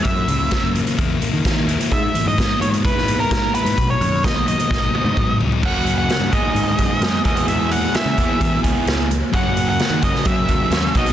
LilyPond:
<<
  \new Staff \with { instrumentName = "Lead electric guitar" } { \time 4/4 \key e \lydian \tempo 4 = 130 e''4. r2 r8 | e''8. dis''8. cis''8 b'8. ais'8. b'8~ | b'16 cis''8. dis''8 dis''2 r8 | fis''8. fis''8. dis''2 dis''8 |
e''8 fis''8 e''4. r4. | fis''8. fis''8. dis''8 e''4. dis''8 | }
  \new Staff \with { instrumentName = "Overdriven electric guitar" } { \time 4/4 \key e \lydian r1 | r1 | r1 | <fis, cis fis ais cis' fis'>4. <gis, dis gis b dis' gis'>4. <gis, dis gis b dis' gis'>8 <e, b, e b e' gis'>8~ |
<e, b, e b e' gis'>4 <e, b, e b e' gis'>4. <e, b, e b e' gis'>4 r8 | <fis, cis fis ais cis' fis'>4. <fis, cis fis ais cis' fis'>4. <fis, cis fis ais cis' fis'>8 <b, fis b dis' fis'>8 | }
  \new Staff \with { instrumentName = "Distorted electric guitar" } { \clef bass \time 4/4 \key e \lydian fis,8 cis8 ais8 e8 e'8 ais8 e8 e'8 | gis,8 e8 b8 gis8 e'8 b8 gis8 e'8 | b,8 dis8 b8 fis8 dis'8 b8 fis8 dis'8 | <fis, cis fis ais cis'>4. <gis, dis gis b dis'>2 <e gis b e'>8~ |
<e gis b e'>4. <e gis b e'>2 r8 | <fis, cis fis ais cis'>2 <fis, cis fis ais cis'>4. <b, fis b dis'>8 | }
  \new Staff \with { instrumentName = "Picked electric bass" } { \clef bass \time 4/4 \key e \lydian fis,8 cis,8. fis,8 r16 e,8 r16 dis8. dis,16 r16 | gis,8 r16 gis,8. gis,8. gis,8. gis,8 r16 gis,16 | b,,8 fis,8. b,,8 r16 gis,,8 r16 gis,8. cis,16 r16 | fis,4~ fis,16 g,16 gis,16 r16 gis,8 fis,16 r16 fis,8 e,8~ |
e,4~ e,16 cis16 e,16 r16 e8 cis,16 r16 cis,4 | fis,4~ fis,16 dis16 fis,16 r16 fis8 dis,16 r16 dis,8 b,,8 | }
  \new DrumStaff \with { instrumentName = "Drums" } \drummode { \time 4/4 <hh bd>8 hh8 <hh bd sn>8 hh16 hh16 <hh bd>8 hh8 <hh bd sn>8 hh16 hh16 | <hh bd>8 hh8 <hh bd sn>8 hh16 hh16 <hh bd>16 sn16 hh8 <hh bd sn>8 hh16 hh16 | <hh bd>8 hh8 <hh bd sn>8 hh16 hh16 <bd sn>8 tommh16 tommh16 <bd toml>8 tomfh16 tomfh16 | <cymc bd>8 hh8 <hh sn>8 <hh bd>8 hh8 <hh bd>8 <hh sn>8 <hh bd>16 hh16 |
hh8 hh8 <hh sn>8 <hh bd>8 <hh bd>8 <hh bd>8 <hh sn>8 hh8 | <hh bd>8 hh8 <hh sn>8 <hh bd>16 sn16 <hh bd>8 <hh bd>8 <hh sn>8 <hh bd>16 hh16 | }
>>